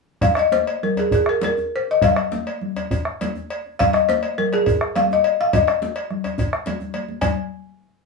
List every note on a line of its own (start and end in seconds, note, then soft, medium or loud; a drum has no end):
0.21 0.38 F5 medium
0.21 bombo rim soft
0.21 bombo low medium
0.21 cowbell medium
0.21 high conga soft
0.21 djembe bass medium
0.21 low conga medium
0.35 0.53 D#5 medium
0.35 bombo rim medium
0.35 cowbell soft
0.35 djembe tone soft
0.52 0.83 C5 medium
0.52 djembe slap medium
0.52 high conga medium
0.67 cowbell soft
0.83 0.98 A#4 medium
0.83 low conga medium
0.97 1.14 G#4 medium
0.97 cowbell soft
0.97 djembe slap soft
0.97 djembe tone medium
1.11 1.29 G#4 medium
1.11 bombo low medium
1.11 cowbell soft
1.11 djembe bass medium
1.26 1.42 A#4 medium
1.26 bombo rim medium
1.41 1.74 A#4 medium
1.41 cowbell soft
1.41 djembe slap medium
1.41 high conga medium
1.41 low conga medium
1.57 djembe tone soft
1.76 1.89 C5 medium
1.87 1.97 D#5 medium
1.87 djembe slap soft
2.02 2.59 F5 medium
2.02 bombo rim soft
2.02 bombo low loud
2.02 cowbell medium
2.02 high conga soft
2.02 low conga medium
2.02 djembe bass medium
2.16 bombo rim medium
2.16 cowbell soft
2.32 djembe slap medium
2.32 high conga medium
2.47 cowbell soft
2.47 djembe slap soft
2.61 low conga medium
2.76 cowbell soft
2.76 djembe slap soft
2.76 djembe tone medium
2.91 bombo low medium
2.91 cowbell soft
2.91 djembe bass medium
3.05 bombo rim medium
3.21 cowbell soft
3.21 djembe slap medium
3.21 high conga medium
3.21 low conga medium
3.35 djembe tone soft
3.50 cowbell soft
3.66 djembe slap soft
3.79 3.95 F5 loud
3.79 bombo rim soft
3.79 bombo low medium
3.79 cowbell medium
3.79 high conga soft
3.79 low conga medium
3.79 djembe bass medium
3.93 4.08 D#5 medium
3.93 bombo rim medium
3.93 cowbell soft
3.93 djembe tone soft
4.09 4.39 C5 medium
4.09 djembe slap medium
4.09 high conga medium
4.23 cowbell soft
4.23 djembe slap soft
4.38 4.53 A#4 medium
4.38 low conga medium
4.53 4.98 G#4 medium
4.53 cowbell soft
4.53 djembe slap soft
4.66 bombo low medium
4.66 cowbell soft
4.66 djembe bass medium
4.81 bombo rim medium
4.95 5.10 F5 medium
4.95 cowbell soft
4.95 djembe slap medium
4.95 high conga medium
4.95 low conga medium
5.11 5.39 D#5 medium
5.11 djembe tone soft
5.24 cowbell soft
5.40 5.55 F5 medium
5.40 djembe slap soft
5.53 6.90 D#5 medium
5.53 bombo low loud
5.53 cowbell medium
5.53 low conga medium
5.53 djembe bass medium
5.67 bombo rim medium
5.67 cowbell soft
5.67 djembe tone soft
5.82 djembe slap medium
5.82 high conga medium
5.96 bombo rim soft
5.96 cowbell soft
6.10 bombo rim soft
6.10 low conga medium
6.24 bombo rim soft
6.24 cowbell soft
6.24 djembe tone soft
6.38 bombo low medium
6.38 cowbell soft
6.38 djembe bass medium
6.53 bombo rim medium
6.66 bombo rim soft
6.66 cowbell soft
6.66 djembe slap medium
6.66 high conga medium
6.66 low conga medium
6.80 djembe tone soft
6.80 low conga soft
6.94 cowbell soft
6.94 djembe slap soft
6.94 high conga soft
7.09 high conga medium
7.21 7.34 G#5 medium
7.21 bombo low medium
7.21 cowbell medium
7.21 low conga medium
7.21 djembe bass medium